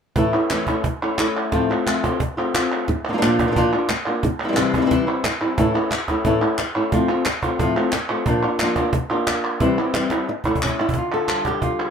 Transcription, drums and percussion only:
0.16 cajon bass
0.34 cajon slap
0.50 cajon slap, clap
0.67 cajon bass, clap
0.84 cajon bass
1.18 cajon slap, clap
1.37 clap
1.52 cajon bass, cajon slap
1.87 cajon slap, clap
2.04 cajon bass, clap
2.20 cajon bass
2.54 cajon slap, clap
2.72 clap
2.88 cajon bass, cajon slap
3.23 cajon slap, clap
3.39 cajon bass, clap
3.56 cajon bass
3.89 cajon slap, clap
4.06 clap
4.23 cajon bass
4.56 cajon slap, clap
4.74 cajon bass, clap
4.91 cajon bass
5.24 cajon slap, clap
5.41 clap
5.58 cajon bass
5.91 cajon slap, clap
6.08 cajon bass, cajon slap, clap
6.25 cajon bass
6.58 cajon slap, clap
6.75 clap
6.92 cajon bass
7.25 cajon slap, clap
7.42 cajon bass, clap
7.59 cajon bass
7.92 cajon slap, clap
8.09 clap
8.26 cajon bass
8.59 cajon slap, clap
8.76 cajon bass, clap
8.93 cajon bass
9.27 cajon slap, clap
9.44 clap
9.60 cajon bass
9.77 cajon slap
9.94 cajon slap, clap
10.10 cajon slap, clap
10.44 cajon bass
10.55 cajon bass
10.62 cajon bass, clap
10.80 clap
10.89 cajon bass
10.94 cajon bass
11.28 cajon slap, clap
11.45 cajon bass, clap
11.62 cajon bass

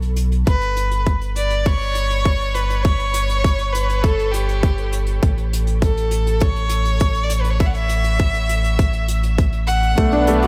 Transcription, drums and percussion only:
0.02 closed hi-hat
0.16 closed hi-hat
0.32 closed hi-hat
0.47 kick, closed hi-hat
0.61 closed hi-hat
0.76 closed hi-hat
0.91 closed hi-hat
1.06 kick, closed hi-hat
1.21 closed hi-hat
1.36 closed hi-hat
1.50 closed hi-hat
1.66 kick, closed hi-hat
1.81 closed hi-hat
1.95 closed hi-hat
2.10 closed hi-hat
2.25 kick, closed hi-hat
2.40 closed hi-hat
2.55 closed hi-hat
2.70 closed hi-hat
2.85 kick, closed hi-hat
2.99 closed hi-hat
3.14 closed hi-hat
3.29 closed hi-hat
3.44 kick, closed hi-hat
3.58 closed hi-hat
3.75 closed hi-hat
3.89 closed hi-hat
4.04 kick, closed hi-hat
4.19 closed hi-hat
4.34 closed hi-hat
4.49 closed hi-hat
4.63 kick, closed hi-hat
4.78 closed hi-hat
4.92 closed hi-hat
5.06 closed hi-hat
5.23 kick, closed hi-hat
5.37 closed hi-hat
5.53 closed hi-hat
5.67 closed hi-hat
5.82 kick, closed hi-hat
5.97 closed hi-hat
6.11 closed hi-hat
6.27 closed hi-hat
6.40 kick, closed hi-hat
6.56 closed hi-hat
6.69 closed hi-hat
6.85 closed hi-hat
7.00 kick, closed hi-hat
7.14 closed hi-hat
7.30 closed hi-hat
7.44 closed hi-hat
7.60 kick, closed hi-hat
7.74 closed hi-hat
7.89 closed hi-hat
8.04 closed hi-hat
8.19 kick, closed hi-hat
8.34 closed hi-hat
8.49 closed hi-hat
8.64 closed hi-hat
8.79 kick, closed hi-hat
8.93 closed hi-hat
9.08 closed hi-hat
9.23 closed hi-hat
9.38 kick, closed hi-hat
9.52 closed hi-hat
9.68 closed hi-hat
9.83 closed hi-hat
9.98 kick, closed hi-hat
10.12 closed hi-hat
10.27 closed hi-hat
10.42 closed hi-hat

